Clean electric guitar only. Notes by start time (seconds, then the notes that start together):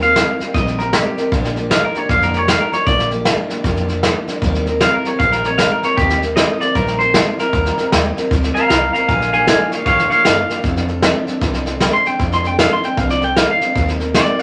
0.03 F5
0.54 D#5
0.79 A#4
0.93 G4
1.71 F5
1.85 A#4
1.97 C#5
2.11 F5
2.23 A#4
2.37 C#5
2.49 F5
2.60 A#4
2.73 C#5
2.86 D5
4.82 F5
4.94 A#4
5.06 C#5
5.19 F5
5.32 A#4
5.46 C#5
5.58 F5
5.72 A#4
5.85 C#5
5.97 G4
6.36 D#5
6.61 D5
6.75 A#4
6.99 C5
7.40 A#4
8.54 F5 A#5
8.68 F5 A#5
8.93 F5 A#5
9.08 F5 G#5
9.33 F5 G#5
9.47 F5 G#5
9.71 C#5 F5
9.86 C#5 F5
10.10 C#5 F5
10.25 F5
11.93 C6
12.07 G5
12.34 C6
12.47 G5
12.59 F5
12.73 C6
12.85 G5
12.99 F5
13.11 D5
13.24 G5
13.37 F5
13.51 F5
14.15 D5
14.39 F5